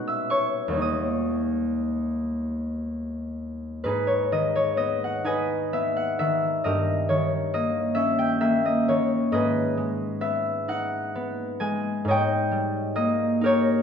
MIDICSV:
0, 0, Header, 1, 2, 480
1, 0, Start_track
1, 0, Key_signature, 5, "minor"
1, 0, Tempo, 1005025
1, 387, Time_signature, 6, 3, 24, 8
1, 1832, Tempo, 950872
1, 2792, Tempo, 898204
1, 5192, Tempo, 910470
1, 7087, End_track
2, 0, Start_track
2, 0, Title_t, "Harp"
2, 0, Program_c, 0, 46
2, 0, Note_on_c, 0, 47, 68
2, 0, Note_on_c, 0, 56, 61
2, 0, Note_on_c, 0, 59, 63
2, 0, Note_on_c, 0, 63, 59
2, 0, Note_on_c, 0, 71, 73
2, 0, Note_on_c, 0, 75, 80
2, 0, Note_on_c, 0, 78, 83
2, 0, Note_on_c, 0, 87, 116
2, 0, Note_on_c, 0, 90, 111
2, 36, Note_on_c, 0, 88, 72
2, 40, Note_on_c, 0, 76, 49
2, 144, Note_off_c, 0, 87, 0
2, 144, Note_on_c, 0, 85, 94
2, 147, Note_off_c, 0, 75, 0
2, 148, Note_on_c, 0, 73, 75
2, 280, Note_off_c, 0, 90, 0
2, 324, Note_on_c, 0, 39, 64
2, 337, Note_on_c, 0, 55, 54
2, 351, Note_on_c, 0, 58, 51
2, 362, Note_off_c, 0, 63, 0
2, 368, Note_on_c, 0, 63, 48
2, 378, Note_off_c, 0, 47, 0
2, 384, Note_off_c, 0, 56, 0
2, 387, Note_on_c, 0, 75, 57
2, 390, Note_on_c, 0, 87, 78
2, 395, Note_off_c, 0, 59, 0
2, 406, Note_off_c, 0, 73, 0
2, 409, Note_off_c, 0, 78, 0
2, 409, Note_off_c, 0, 88, 0
2, 411, Note_off_c, 0, 76, 0
2, 413, Note_off_c, 0, 71, 0
2, 554, Note_off_c, 0, 85, 0
2, 1820, Note_off_c, 0, 39, 0
2, 1826, Note_off_c, 0, 55, 0
2, 1833, Note_on_c, 0, 71, 85
2, 1834, Note_off_c, 0, 58, 0
2, 1836, Note_off_c, 0, 63, 0
2, 1837, Note_on_c, 0, 44, 66
2, 1842, Note_on_c, 0, 63, 65
2, 1845, Note_on_c, 0, 68, 67
2, 1950, Note_on_c, 0, 73, 77
2, 2071, Note_off_c, 0, 75, 0
2, 2076, Note_on_c, 0, 51, 50
2, 2078, Note_on_c, 0, 75, 77
2, 2154, Note_off_c, 0, 73, 0
2, 2195, Note_on_c, 0, 73, 77
2, 2276, Note_off_c, 0, 87, 0
2, 2278, Note_off_c, 0, 75, 0
2, 2302, Note_on_c, 0, 59, 56
2, 2305, Note_on_c, 0, 75, 93
2, 2398, Note_off_c, 0, 73, 0
2, 2440, Note_on_c, 0, 78, 73
2, 2536, Note_off_c, 0, 63, 0
2, 2542, Note_on_c, 0, 63, 56
2, 2547, Note_off_c, 0, 71, 0
2, 2547, Note_on_c, 0, 80, 89
2, 2549, Note_off_c, 0, 75, 0
2, 2552, Note_on_c, 0, 71, 71
2, 2557, Note_on_c, 0, 75, 68
2, 2642, Note_off_c, 0, 78, 0
2, 2783, Note_off_c, 0, 59, 0
2, 2788, Note_on_c, 0, 59, 57
2, 2789, Note_on_c, 0, 76, 91
2, 2914, Note_on_c, 0, 78, 77
2, 2999, Note_off_c, 0, 76, 0
2, 3033, Note_off_c, 0, 51, 0
2, 3034, Note_on_c, 0, 76, 86
2, 3039, Note_on_c, 0, 51, 55
2, 3122, Note_off_c, 0, 78, 0
2, 3269, Note_off_c, 0, 75, 0
2, 3275, Note_on_c, 0, 75, 84
2, 3278, Note_on_c, 0, 43, 59
2, 3280, Note_on_c, 0, 70, 58
2, 3284, Note_on_c, 0, 67, 66
2, 3294, Note_off_c, 0, 80, 0
2, 3296, Note_off_c, 0, 59, 0
2, 3297, Note_off_c, 0, 71, 0
2, 3298, Note_off_c, 0, 51, 0
2, 3299, Note_off_c, 0, 44, 0
2, 3304, Note_off_c, 0, 68, 0
2, 3443, Note_off_c, 0, 76, 0
2, 3514, Note_on_c, 0, 73, 80
2, 3518, Note_on_c, 0, 51, 51
2, 3747, Note_off_c, 0, 75, 0
2, 3753, Note_on_c, 0, 58, 60
2, 3755, Note_on_c, 0, 75, 84
2, 3973, Note_on_c, 0, 76, 94
2, 3977, Note_on_c, 0, 61, 58
2, 4101, Note_on_c, 0, 79, 82
2, 4184, Note_off_c, 0, 76, 0
2, 4213, Note_off_c, 0, 58, 0
2, 4219, Note_on_c, 0, 58, 67
2, 4219, Note_on_c, 0, 76, 91
2, 4308, Note_off_c, 0, 79, 0
2, 4345, Note_off_c, 0, 75, 0
2, 4351, Note_on_c, 0, 75, 74
2, 4428, Note_off_c, 0, 76, 0
2, 4467, Note_off_c, 0, 51, 0
2, 4467, Note_off_c, 0, 73, 0
2, 4472, Note_on_c, 0, 51, 57
2, 4475, Note_on_c, 0, 73, 88
2, 4612, Note_off_c, 0, 63, 0
2, 4701, Note_off_c, 0, 75, 0
2, 4706, Note_on_c, 0, 44, 65
2, 4708, Note_on_c, 0, 75, 91
2, 4715, Note_on_c, 0, 68, 72
2, 4718, Note_on_c, 0, 71, 72
2, 4723, Note_off_c, 0, 61, 0
2, 4726, Note_off_c, 0, 58, 0
2, 4731, Note_off_c, 0, 43, 0
2, 4732, Note_off_c, 0, 70, 0
2, 4733, Note_off_c, 0, 51, 0
2, 4733, Note_off_c, 0, 73, 0
2, 4734, Note_off_c, 0, 67, 0
2, 4949, Note_on_c, 0, 56, 53
2, 5181, Note_on_c, 0, 59, 60
2, 5183, Note_on_c, 0, 76, 85
2, 5431, Note_on_c, 0, 63, 61
2, 5434, Note_on_c, 0, 78, 90
2, 5600, Note_off_c, 0, 76, 0
2, 5674, Note_off_c, 0, 59, 0
2, 5680, Note_on_c, 0, 59, 67
2, 5911, Note_off_c, 0, 56, 0
2, 5915, Note_on_c, 0, 80, 99
2, 5917, Note_on_c, 0, 56, 65
2, 6148, Note_off_c, 0, 44, 0
2, 6151, Note_on_c, 0, 44, 74
2, 6164, Note_off_c, 0, 75, 0
2, 6167, Note_on_c, 0, 73, 74
2, 6170, Note_on_c, 0, 75, 76
2, 6174, Note_off_c, 0, 80, 0
2, 6176, Note_off_c, 0, 56, 0
2, 6177, Note_off_c, 0, 59, 0
2, 6177, Note_off_c, 0, 68, 0
2, 6179, Note_off_c, 0, 71, 0
2, 6182, Note_on_c, 0, 79, 100
2, 6251, Note_off_c, 0, 78, 0
2, 6397, Note_on_c, 0, 55, 55
2, 6623, Note_off_c, 0, 75, 0
2, 6628, Note_on_c, 0, 58, 66
2, 6631, Note_on_c, 0, 75, 97
2, 6868, Note_off_c, 0, 63, 0
2, 6870, Note_on_c, 0, 63, 68
2, 6876, Note_off_c, 0, 73, 0
2, 6883, Note_on_c, 0, 70, 74
2, 6885, Note_on_c, 0, 67, 75
2, 6894, Note_on_c, 0, 73, 97
2, 7087, Note_off_c, 0, 44, 0
2, 7087, Note_off_c, 0, 55, 0
2, 7087, Note_off_c, 0, 58, 0
2, 7087, Note_off_c, 0, 63, 0
2, 7087, Note_off_c, 0, 67, 0
2, 7087, Note_off_c, 0, 70, 0
2, 7087, Note_off_c, 0, 73, 0
2, 7087, Note_off_c, 0, 75, 0
2, 7087, Note_off_c, 0, 79, 0
2, 7087, End_track
0, 0, End_of_file